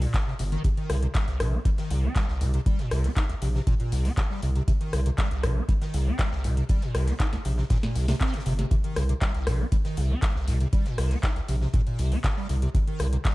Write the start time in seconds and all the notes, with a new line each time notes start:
0.02 A#2, open hi-hat
0.14 C3, kick, snare, clap, closed hi-hat
0.27 C3, snare
0.39 G1 C3, closed hi-hat, open hi-hat
0.52 D#3, closed hi-hat
0.64 C3, kick, closed hi-hat
0.77 D#3, closed hi-hat
0.89 C2 C3, cross-stick, closed hi-hat, open hi-hat
1.03 C3, closed hi-hat
1.14 G3, kick, snare, clap, closed hi-hat
1.28 C2, snare, closed hi-hat
1.40 A#1 C3, cross-stick, closed hi-hat, open hi-hat
1.53 C4
1.65 G3, kick, closed hi-hat
1.78 D#3, snare, closed hi-hat
1.91 C2 C3, closed hi-hat, open hi-hat
2.03 C4
2.16 G3, kick, snare, clap, closed hi-hat
2.28 C2, snare
2.41 C2 C3, closed hi-hat, open hi-hat
2.53 C3, closed hi-hat
2.66 G3, kick, closed hi-hat
2.79 A#2, snare, closed hi-hat
2.91 C2 C3, cross-stick, open hi-hat
3.04 C4, snare, closed hi-hat
3.16 D#4, kick, snare, clap, closed hi-hat
3.29 C2, snare, closed hi-hat
3.42 A#1 C3, closed hi-hat, open hi-hat
3.55 C3, snare
3.67 A#2, kick, closed hi-hat
3.80 A#2, closed hi-hat
3.92 C2 C3, closed hi-hat, open hi-hat
4.05 C4, open hi-hat
4.17 C3, kick, snare, clap, closed hi-hat
4.30 G3, snare
4.42 C2 C3, closed hi-hat, open hi-hat
4.56 C3, closed hi-hat
4.68 C3, kick, closed hi-hat
4.81 D#3, closed hi-hat
4.93 C2 C3, cross-stick, closed hi-hat, open hi-hat
5.06 C3, closed hi-hat
5.18 G3, kick, snare, clap, closed hi-hat
5.31 C2, snare, closed hi-hat
5.43 A#1 C3, cross-stick, closed hi-hat, open hi-hat
5.56 C4
5.69 G3, kick, closed hi-hat
5.82 D#3, snare, closed hi-hat
5.94 C2 C3, closed hi-hat, open hi-hat
6.07 C4
6.19 G3, kick, snare, clap, closed hi-hat
6.32 C2, snare
6.44 C2 C3, closed hi-hat, open hi-hat
6.57 C3, closed hi-hat
6.69 G3, kick, closed hi-hat
6.82 A#2, snare, closed hi-hat
6.95 C2 C3, cross-stick, open hi-hat
7.07 C4, snare, closed hi-hat
7.20 D#4, kick, snare, clap, closed hi-hat
7.33 C2, snare, closed hi-hat
7.45 A#1 C3, closed hi-hat, open hi-hat
7.58 C3, snare
7.70 A#2, kick, snare, closed hi-hat
7.83 A#2, snare, closed hi-hat
7.95 C2 C3, closed hi-hat, open hi-hat
8.08 C3, snare, closed hi-hat, open hi-hat
8.20 C4, kick, snare, clap, closed hi-hat
8.27 snare, closed hi-hat
8.34 C3, snare, closed hi-hat
8.39 snare, closed hi-hat
8.46 G1 C3, closed hi-hat, open hi-hat
8.59 C3, snare, closed hi-hat
8.71 C3, kick, closed hi-hat
8.84 D#3, closed hi-hat
8.96 C2 C3, cross-stick, closed hi-hat, open hi-hat
9.09 C3, closed hi-hat
9.21 G3, kick, snare, clap, closed hi-hat
9.34 C2, snare, closed hi-hat
9.47 A#1 C3, cross-stick, closed hi-hat, open hi-hat
9.60 C4
9.72 G3, kick, closed hi-hat
9.85 D#3, snare, closed hi-hat
9.97 C2 C3, closed hi-hat, open hi-hat
10.10 C4
10.22 G3, kick, snare, clap, closed hi-hat
10.35 C2, snare
10.48 C2 C3, closed hi-hat, open hi-hat
10.60 C3, closed hi-hat
10.73 G3, kick, closed hi-hat
10.85 A#2, snare, closed hi-hat
10.98 C2 C3, cross-stick, open hi-hat
11.11 C4, snare, closed hi-hat
11.23 D#4, kick, snare, clap, closed hi-hat
11.36 C2, snare, closed hi-hat
11.48 A#1 C3, closed hi-hat, open hi-hat
11.61 C3, snare
11.73 A#2, kick, closed hi-hat
11.87 A#2, closed hi-hat
11.99 C2 C3, closed hi-hat, open hi-hat
12.12 C4, open hi-hat
12.24 C3, kick, snare, clap, closed hi-hat
12.37 G3, snare
12.49 C2 C3, closed hi-hat, open hi-hat
12.62 C3, closed hi-hat
12.75 C3, kick, closed hi-hat
12.87 D#3, closed hi-hat
12.99 C2 C3, cross-stick, closed hi-hat, open hi-hat
13.13 C3, closed hi-hat
13.25 G3, kick, snare, clap, closed hi-hat